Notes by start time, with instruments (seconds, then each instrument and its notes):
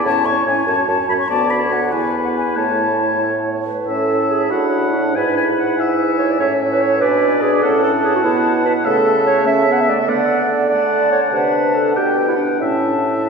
0.04 bassoon A2, french horn C#4, clarinet E4, oboe C#5, flute A5
0.25 bassoon A2, french horn C#4, clarinet E4, oboe C#5, flute C#6
0.46 bassoon A2, french horn C#4, clarinet E4, oboe C#5, flute G#5
0.67 bassoon F#2, french horn C#4, clarinet F#4, oboe C#5, flute A5
0.87 bassoon F#2, french horn C#4, clarinet F#4, oboe C#5, flute A5
1.08 bassoon F#2, french horn C#4, clarinet F#4, oboe C#5, flute B5
1.19 flute C#6
1.28 bassoon D2, french horn B3, clarinet F#4, oboe D5, flute A5
1.50 flute B5
1.60 oboe C#5
1.73 flute F#5
1.90 bassoon E2, french horn B3, clarinet E4, oboe B4, flute G#5
2.24 flute F#5
2.35 flute G#5
2.56 bassoon A2, french horn A3, clarinet E4, oboe C#5, flute A5
3.22 clarinet A4
3.45 clarinet C#5
3.66 clarinet B4
3.87 bassoon A2, french horn C#4, clarinet A4, oboe E5, flute A5
4.30 clarinet G#4
4.50 bassoon A2, french horn D4, clarinet F#4, oboe F#5, flute B5
4.94 clarinet D4
5.15 bassoon G#2, french horn E4, clarinet B4, oboe G#5, flute B5
5.37 oboe G#5
5.58 oboe F#5
5.76 french horn E4, oboe E5, flute G#5
6.18 clarinet C#5
6.31 clarinet D5
6.40 bassoon A2, french horn C#4, clarinet C#5, oboe E5
6.72 clarinet B4
6.81 clarinet C#5
7.01 bassoon B2, french horn D4, clarinet B4, oboe D5, flute G#5
7.42 clarinet G#4
7.62 bassoon A2, french horn C#4, clarinet A4, oboe F#5, flute A5
7.83 clarinet A4
8.04 clarinet G#4
8.16 clarinet F#4
8.24 bassoon B2, french horn B3, clarinet E4
8.65 clarinet B4
8.84 bassoon C#3, french horn A3, clarinet A4, oboe E5, flute A5
9.27 clarinet C#5
9.46 french horn C#4, oboe E5, clarinet E5
9.67 french horn B3
9.72 clarinet F#5
9.81 clarinet E5
9.88 french horn A3, clarinet D5
10.00 clarinet E5
10.08 bassoon D3, french horn B3, clarinet D5, flute F#5, oboe F#5
10.70 french horn A3, clarinet D5, oboe F#5, flute A5
11.12 clarinet C#5
11.32 bassoon C3, french horn D4, clarinet B4, oboe F#5, flute A5
11.75 clarinet A4
11.96 bassoon B2, french horn D4, clarinet G4, oboe G5, flute G5
12.28 clarinet E4, oboe F#5
12.37 clarinet D4
12.60 bassoon A2, clarinet C#4, french horn E4, oboe E5, flute A5